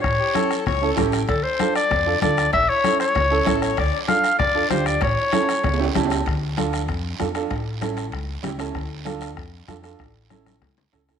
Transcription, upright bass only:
\new Staff \with { instrumentName = "Upright bass" } { \clef bass \time 4/4 \key d \minor \tempo 4 = 193 a,,8 r4. cis,4 a,,4 | d,8 r4. f,4 d,4 | a,,8 r4. cis,4 a,,4 | d,8 r4. f,4 d,4 |
a,,8 r4. cis,4 cis,4 | d,2 f,4 f,4 | a,,2 cis,4 cis,4 | d,2 f,4 f,4 |
a,,2 cis,4 cis,4 | }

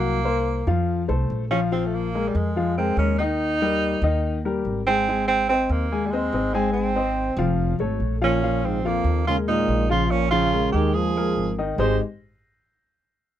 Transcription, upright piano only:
\new Staff \with { instrumentName = "Upright piano" } { \time 4/4 \key aes \major \tempo 4 = 143 <fis fis' fis''>8 <bes bes' c''>4 <f f' f''>4 <a a' c''>4 <f f' f''>8 | <f f' f''>4 <aes aes' bes'>4 <f f' f''>8 <aes aes' bes'>8 <aes aes' bes'>8 <ees ees' ees''>8~ | <ees ees' ees''>8 <g g' bes'>4 <ees ees' ees''>4 <g g' bes'>4 <aes aes' aes''>8 | <aes aes' aes''>4 <c' c'' ees''>4 <aes aes' aes''>8 <c' c'' ees''>8 <c' c'' ees''>8 <aes aes' aes''>8~ |
<aes aes' aes''>8 <c' c'' ees''>4 <f f' f''>4 <a a' cis''>4 <f f' f''>8 | <f f' f''>4 <f f' f''>4 <aes aes' bes'>8 <aes aes' bes'>4 <f f' f''>8~ | <f f' f''>8 <f f' f''>8 <aes aes' bes'>8 <aes aes' bes'>4 <aes aes' bes'>4 <ees ees' ees''>8 | <aes ees' g' aes' c'' ees''>8 r2. r8 | }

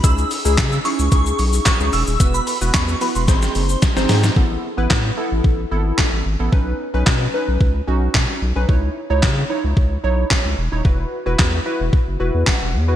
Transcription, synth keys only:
\new Staff \with { instrumentName = "Synth keys" } { \time 4/4 \key cis \minor \tempo 4 = 111 << { r1 | r1 | r1 | r1 |
r1 | r2. fis''4 | } \\ { <cis' dis' e' gis'>8 r16 <cis' dis' e' gis'>8 r16 <cis' dis' e' gis'>8 <cis' dis' e' gis'>4 r16 <cis' dis' e' gis'>8 r16 | <b e' fis' b'>8 r16 <b e' fis' b'>8 r16 <b e' fis' b'>8 <bis dis' gis' bis'>4 r16 <bis dis' gis' bis'>8 r16 | <b e' a'>8 r16 <b e' b'>8 r16 <b e' a'>8. r16 <b e' a'>4 r16 <b e' a'>16 | <cis' dis' b'>8 r16 <cis' dis' b'>8 r16 <cis' dis' b'>8. r16 <cis' dis' fis'>4 r16 <cis' dis' b'>16 |
<dis' e' cis''>8 r16 <dis' e' cis''>8 r16 <dis' e' cis''>8. r16 <dis' e' cis''>4 r16 <dis' e' cis''>16 | <e' fis' b'>8 r16 <e' fis' b'>8 r16 <e' fis' b'>8. r16 <e' fis' b'>4 r16 <e' fis' b'>16 | } >> }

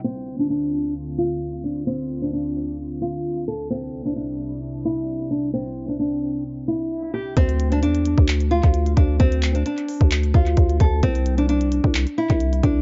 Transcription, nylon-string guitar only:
\new Staff \with { instrumentName = "Nylon-string guitar" } { \time 4/4 \key d \minor \tempo 4 = 131 c'8. d'16 d'4 r8 f'4 d'8 | c'8. d'16 d'4 r8 f'4 a'8 | c'8. d'16 d'4 r8 e'4 d'8 | c'8. d'16 d'4 r8 e'4 g'8 |
c'8. d'16 d'4 r8 f'4 d'8 | c'8. d'16 d'4 r8 f'4 a'8 | c'8. d'16 d'4 r8 e'4 d'8 | }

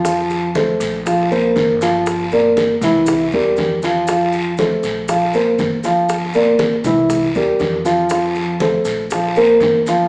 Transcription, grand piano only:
\new Staff \with { instrumentName = "Grand piano" } { \time 4/4 \key f \major \tempo 4 = 119 <f f' f''>4 <a a' c''>4 <f f' f''>8 <bes bes' c''>4 <f f' f''>8~ | <f f' f''>8 <bes bes' d''>4 <e e' e''>4 <g g' bes'>4 <f f' f''>8 | <f f' f''>4 <a a' c''>4 <f f' f''>8 <bes bes' c''>4 <f f' f''>8~ | <f f' f''>8 <bes bes' d''>4 <e e' e''>4 <g g' bes'>4 <f f' f''>8 |
<f f' f''>4 <a a' c''>4 <f f' f''>8 <bes bes' c''>4 <f f' f''>8 | }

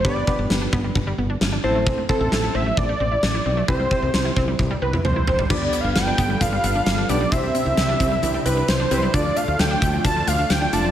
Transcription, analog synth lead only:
\new Staff \with { instrumentName = "Analog synth lead" } { \time 4/4 \key c \major \tempo 4 = 132 d''4 r2. | r8 a'4 e''8 d''2 | c''2~ c''8 b'8 c''4 | \tuplet 3/2 { d''4 f''8 } g''4 f''4. d''8 |
e''2~ e''8 b'8 c''4 | d''8 f''8 g''4 a''8 f''8 g''8 a''8 | }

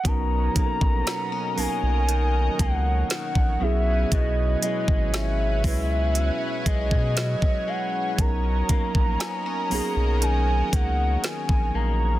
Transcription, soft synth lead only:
\new Staff \with { instrumentName = "Soft synth lead" } { \time 4/4 \key b \major \tempo 4 = 59 ais''4. gis''4 fis''8 fis''8 e''8 | dis''8 dis''8 e''4. dis''4 fis''8 | ais''2 gis''8 fis''8 gis''8 ais''8 | }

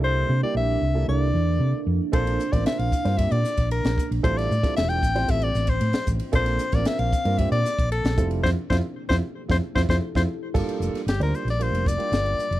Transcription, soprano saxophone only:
\new Staff \with { instrumentName = "Soprano saxophone" } { \time 4/4 \key g \dorian \tempo 4 = 114 c''8. d''16 e''4 d''4. r8 | c''8. d''16 e''16 f''8. e''16 d''8. bes'8. r16 | c''16 d''8. e''16 g''8. e''16 d''8 c''8. r8 | c''8. d''16 e''16 f''8. e''16 d''8. a'8. r16 |
c''16 r16 c''16 r8 c''16 r8 c''16 r16 c''16 c''16 r16 c''16 r8 | r4 g'16 bes'16 c''16 d''16 c''8 d''4. | }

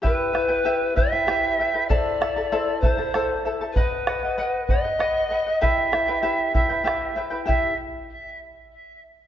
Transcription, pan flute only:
\new Staff \with { instrumentName = "Pan flute" } { \time 6/8 \key e \minor \tempo 4. = 65 b'4. e''4. | d''4. c''4 r8 | b'4. dis''4. | e''4. e''4 r8 |
e''8 r2 r8 | }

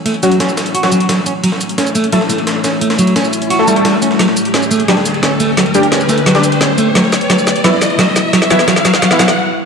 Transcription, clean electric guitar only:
\new Staff \with { instrumentName = "Clean electric guitar" } { \clef bass \time 4/4 \key g \lydian \tempo 4 = 174 a8 fis8 cis'8 r8 fis'8 fis8 fis8 cis'8 | fis8 r8 cis'8 a8 fis8 a8 r8 cis'8 | a8 fis8 cis'8 r8 fis'8 g8 g8 cis'8 | fis8 r8 cis'8 a8 fis8 r8 cis'8 a8 |
fis8 r8 cis'8 a8 fis8 r8 cis'8 a8 | fis8 r8 fis8 r8 fis8 r8 fis8 r8 | fis8 fis8 fis8 fis8 fis8 fis8 r4 | }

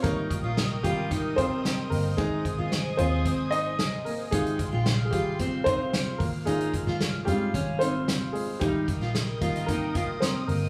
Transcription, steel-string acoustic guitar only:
\new Staff \with { instrumentName = "Steel-string acoustic guitar" } { \time 4/4 \key ees \mixolydian \tempo 4 = 112 ees'8 r16 f'16 r8 f'8 ees'8 f'16 r4 r16 | ees'8 r16 f'16 r8 f'8 c'8 ees'16 r4 r16 | ees'8 r16 f'16 r8 f'8 c'8 ees'16 r4 r16 | ees'8 r16 f'16 r8 f'8 des'8 ees'16 r4 r16 |
ees'8 r16 f'16 r8 f'8 ees'8 f'16 r4 r16 | }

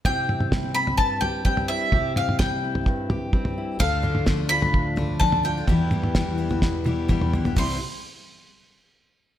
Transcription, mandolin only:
\new Staff \with { instrumentName = "Mandolin" } { \time 4/4 \key c \major \tempo 4 = 128 g''4. b''8 a''8 g''8 g''8 e''8~ | e''8 f''8 g''2~ g''8 r8 | f''4 r8 b''4. a''8 g''8~ | g''2.~ g''8 r8 |
c'''8 r2. r8 | }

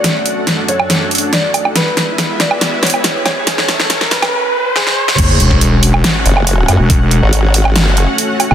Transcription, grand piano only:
\new Staff \with { instrumentName = "Grand piano" } { \time 4/4 \key fis \minor \tempo 4 = 140 d''4. cis''4. d''8 r8 | b'4. d''8 r8 cis''8 r8 cis''8~ | cis''4. b'4. gis'8 r8 | r1 |
r1 | }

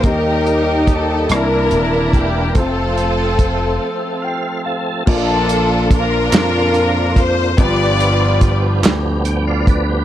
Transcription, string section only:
\new Staff \with { instrumentName = "String section" } { \time 6/8 \key bes \major \tempo 4. = 48 << { bes'4 a'8 bes'4 g'8 | a'2 r4 | a'4 bes'4. c''8 | d''4 r2 | } \\ { <ees' g'>4. <d' e'>4. | <c' f'>2 r4 | <d' f'>4 <d' f'>4. r8 | <f' b'>4. r4. | } >> }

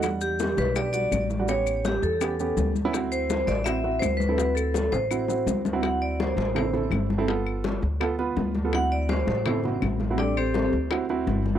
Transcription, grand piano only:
\new Staff \with { instrumentName = "Grand piano" } { \time 4/4 \key d \mixolydian \tempo 4 = 165 <g d' fis''>4. r8 <g d' g'>16 r16 <g d' fis'>4 r16 <g d' fis'>16 | <b cis' g'>4. r8 <b cis' g'>16 r16 <b cis' g'>4 r16 <b cis' e'>16 | <c' e' fis'>4. r8 <c' e' fis'>16 r16 <c' e' fis'>4 r16 <c' e' a'>16 | <c' e' fis'>4. r8 <c' e' fis'>16 r16 <c' e' fis'>4 r16 <c' e' fis'>16 |
<c' e' fis'>4. r8 <c' e' a'>16 r16 <c' e' a'>4 r16 <c' e' a'>16 | <b f' a'>4. r8 <b f' a'>16 r16 <b f' b'>4 r16 <b f' a'>16 | <c' e' fis'>4. r8 <c' e' a'>16 r16 <c' e' fis'>4 r16 <c' e' fis'>16 | <a c' g'>4. r8 <c' e' fis'>16 r16 <c' e' fis'>4 r16 <c' e' fis'>16 | }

